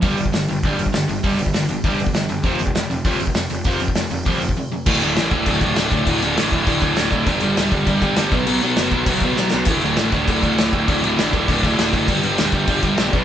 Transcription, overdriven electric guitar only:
X:1
M:4/4
L:1/8
Q:1/4=199
K:G
V:1 name="Overdriven electric guitar" clef=bass
[G,,D,G,] [G,,D,] [G,,D,] [G,,D,] [G,,D,G,] [G,,D,] [G,,D,] [G,,D,] | [G,,D,G,] [G,,D,] [G,,D,] [G,,D,] [G,,D,G,] [G,,D,] [G,,D,] [G,,D,] | [=F,,C,=F,] [F,,C,] [F,,C,] [F,,C,] [F,,C,F,] [F,,C,] [F,,C,] [F,,C,] | [=F,,C,=F,] [F,,C,] [F,,C,] [F,,C,] [F,,C,F,] [F,,C,] [F,,C,] [F,,C,] |
[D,,A,,D,] [D,,A,,D,] [D,,A,,D,] [D,,A,,D,] [D,,A,,D,] [D,,A,,D,] [D,,A,,D,] [D,,A,,D,] | [D,,A,,D,] [D,,A,,D,] [D,,A,,D,] [D,,A,,D,] [D,,A,,D,] [D,,A,,D,] [D,,A,,D,] [D,,A,,D,] | [G,,D,G,] [G,,D,G,] [G,,D,G,] [G,,D,G,] [G,,D,G,] [G,,D,G,] [G,,D,G,] [B,,F,B,] | [B,,F,B,] [B,,F,B,] [B,,F,B,] [B,,F,B,] [B,,F,B,] [B,,F,B,] [B,,F,B,] [B,,F,B,] |
[D,,A,,D,] [D,,A,,D,] [D,,A,,D,] [D,,A,,D,] [D,,A,,D,] [D,,A,,D,] [D,,A,,D,] [D,,A,,D,] | [D,,A,,D,] [D,,A,,D,] [D,,A,,D,] [D,,A,,D,] [D,,A,,D,] [D,,A,,D,] [D,,A,,D,] [D,,A,,D,] | [G,,D,G,] [G,,D,G,] [G,,D,G,] [G,,D,G,] [G,,D,G,] [G,,D,G,] [G,,D,G,] [B,,F,B,] |]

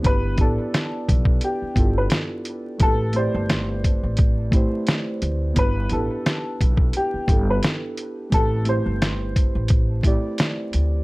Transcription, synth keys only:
X:1
M:4/4
L:1/8
Q:"Swing 16ths" 1/4=87
K:Am
V:1 name="Synth keys"
[B,DEGB] [B,DEGd]4 [B,DEFGA]3 | [A,CEGB] [A,CEGd]4 [A,CEGc]3 | [B,DEGB] [B,DEGB]4 [B,DEGA]3 | [A,CEGB] [A,CEGc]4 [A,CEGd]3 |]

